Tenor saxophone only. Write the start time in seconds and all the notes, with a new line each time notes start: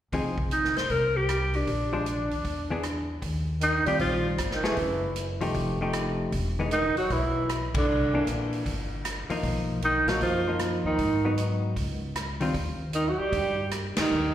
3.61 D#3
3.86 G3
3.99 F3
4.54 D#3
4.63 E3
6.73 D#3
6.98 F#3
7.12 E3
7.77 D3
9.84 D#3
10.09 F#3
10.23 F3
10.86 D#3
12.94 D#3
13.10 F#3
13.20 G3
13.99 D#3